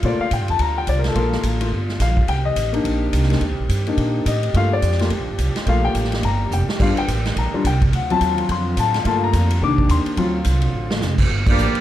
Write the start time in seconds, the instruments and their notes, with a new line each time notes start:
Already playing: trombone section D3 G3 F4
0.03 upright bass A#2, grand piano A3 A#3 F4 D5, kick, ride
0.20 grand piano F5, muted upright bass stroke
0.31 upright bass A2, grand piano G5, kick, hi-hat pedal, ride
0.40 upright bass G2
0.48 upright bass F2, grand piano A5, ride
0.59 upright bass D2, grand piano A#5, kick, ride
0.78 grand piano G5
0.87 upright bass C2, grand piano D5, kick, hi-hat pedal, ride
0.99 grand piano A#4
1.04 grand piano A4, snare, ride
1.15 upright bass A#1, grand piano A#3 F4 A4 A#4, kick, ride
1.32 snare
1.43 upright bass A1, kick, hi-hat pedal, ride
1.60 grand piano A3 A#3 F4, ride
1.72 upright bass G1, kick
1.89 snare
2.00 upright bass A#1, grand piano F5, kick, snare, hi-hat pedal, ride
2.17 kick
2.27 upright bass C2, trombone section D#3 C4 G4, grand piano G5, kick, ride
2.45 grand piano D#5
2.56 upright bass A1, kick, hi-hat pedal, ride
2.72 grand piano A#3 D4 D#4, ride
2.84 upright bass A#1, kick, ride
3.13 upright bass C2, kick, hi-hat pedal, ride
3.23 snare
3.30 grand piano A#3 D4 D#4, snare, ride
3.41 upright bass D#2, kick, ride
3.50 upright bass C2
3.60 upright bass A#1
3.69 upright bass G2, kick, hi-hat pedal, ride
3.87 grand piano A#3 D4 D#4, ride
3.97 upright bass A#2, kick, ride
4.26 upright bass A2, grand piano D#5, kick, hi-hat pedal, ride
4.43 ride
4.53 upright bass G2, trombone section F3 D4, grand piano A3 A#3 F4 F5, kick, ride
4.73 grand piano D5
4.82 upright bass F2, kick, hi-hat pedal, ride
4.92 snare
4.99 grand piano A3 A#3 F4, snare, ride
5.10 upright bass D2, kick, ride
5.19 upright bass A#1
5.29 upright bass G1
5.38 upright bass C2, kick, hi-hat pedal, ride
5.55 muted upright bass stroke, snare, ride
5.66 upright bass A#1, grand piano A3 A#3 F4 F5, kick, ride
5.85 grand piano G5
5.94 upright bass A1, kick, hi-hat pedal, ride
6.04 snare
6.12 snare, ride
6.23 upright bass G1, grand piano A#5, kick, ride
6.51 upright bass F1, grand piano G5, hi-hat pedal
6.68 muted upright bass stroke, snare
6.79 upright bass G1, trombone section D#3 A#3, grand piano G3 D4 F4 F5, kick, crash
6.97 grand piano G5, muted upright bass stroke, ride
7.08 upright bass A1, kick, hi-hat pedal, ride
7.25 snare, ride
7.36 upright bass A#1, grand piano A#5, kick, ride
7.53 grand piano G3 D4 F4, muted upright bass stroke
7.65 upright bass C2, grand piano G5, kick, hi-hat pedal, ride
7.82 kick, ride
7.92 upright bass D2, trombone section D3 F#3 C4 F4, grand piano F#5, kick, ride
8.10 grand piano F#3 C4 F4 A5, ride
8.21 upright bass D#2, kick, hi-hat pedal, ride
8.38 ride
8.49 upright bass F2, grand piano C6, kick, ride
8.77 upright bass A2, grand piano A5, kick, hi-hat pedal, ride
8.94 snare, ride
9.03 upright bass G2, trombone section A#2 G3, grand piano A3 A#3 F4, kick, ride
9.08 grand piano A5
9.24 grand piano A#5
9.33 upright bass F2, kick, hi-hat pedal, ride
9.50 ride
9.61 upright bass C2, trombone section D#3 C4 G4, grand piano D#3 A#3 D4 D6, kick
9.78 kick
9.89 upright bass D#2, grand piano C6, kick, hi-hat pedal, ride
10.06 muted upright bass stroke, ride
10.17 upright bass D2, trombone section D3 F#3 F4, grand piano F#3 C4 F4, kick, ride
10.44 upright bass C2, kick, hi-hat pedal, ride
10.62 ride
10.73 upright bass A1
10.90 snare
11.01 upright bass F1, snare, hi-hat pedal
11.18 kick, crash
11.29 upright bass G1, trombone section D3 G3 A#3 F4, kick
11.46 trombone section F3 A#3 D4, trumpet section A#3 F4 G4 D5, kick, crash
11.58 upright bass A1, hi-hat pedal
11.75 muted upright bass stroke, ride